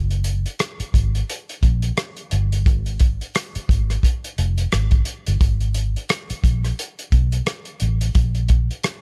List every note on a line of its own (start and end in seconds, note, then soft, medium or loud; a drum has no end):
0.00 0.44 F#1 medium
0.11 closed hi-hat soft
0.24 closed hi-hat medium
0.46 closed hi-hat soft
0.59 cross-stick loud
0.59 closed hi-hat medium
0.80 muted fingered electric bass stroke soft
0.80 closed hi-hat soft
0.94 1.21 G#1 medium
0.94 kick medium
0.94 closed hi-hat medium
1.15 closed hi-hat soft
1.30 closed hi-hat medium
1.49 closed hi-hat soft
1.63 1.90 A#1 medium
1.63 kick medium
1.63 closed hi-hat medium
1.82 closed hi-hat soft
1.97 cross-stick loud
1.97 closed hi-hat medium
2.17 closed hi-hat soft
2.31 2.67 G1 medium
2.31 closed hi-hat medium
2.52 closed hi-hat soft
2.66 3.20 G#1 medium
2.66 kick loud
2.66 closed hi-hat medium
2.86 closed hi-hat soft
3.00 kick medium
3.00 closed hi-hat medium
3.21 closed hi-hat soft
3.35 cross-stick loud
3.35 closed hi-hat medium
3.55 muted fingered electric bass stroke soft
3.55 closed hi-hat soft
3.69 3.96 G#1 medium
3.69 kick medium
3.69 closed hi-hat medium
3.90 cross-stick soft
3.90 closed hi-hat soft
4.03 kick medium
4.03 closed hi-hat medium
4.24 closed hi-hat soft
4.38 4.65 F1 medium
4.38 closed hi-hat medium
4.58 closed hi-hat soft
4.72 5.00 G#1 medium
4.72 cross-stick medium
4.72 closed hi-hat medium
4.91 kick medium
4.91 closed hi-hat soft
5.05 closed hi-hat medium
5.26 5.39 G1 medium
5.26 closed hi-hat medium
5.41 5.94 G#1 medium
5.41 kick loud
5.41 closed hi-hat medium
5.61 closed hi-hat soft
5.74 closed hi-hat medium
5.96 closed hi-hat soft
6.09 cross-stick loud
6.09 closed hi-hat medium
6.30 muted fingered electric bass stroke soft
6.30 closed hi-hat soft
6.44 6.71 A#1 medium
6.44 kick medium
6.44 closed hi-hat medium
6.64 cross-stick soft
6.64 closed hi-hat soft
6.79 closed hi-hat medium
6.99 closed hi-hat soft
7.12 7.39 B1 medium
7.12 kick medium
7.12 closed hi-hat medium
7.32 closed hi-hat medium
7.46 cross-stick medium
7.46 closed hi-hat medium
7.65 closed hi-hat soft
7.80 8.08 A1 medium
7.80 closed hi-hat medium
8.01 closed hi-hat medium
8.15 8.69 A#1 medium
8.15 kick medium
8.15 closed hi-hat medium
8.35 closed hi-hat soft
8.48 kick medium
8.48 closed hi-hat medium
8.71 closed hi-hat soft
8.83 cross-stick loud
8.83 closed hi-hat medium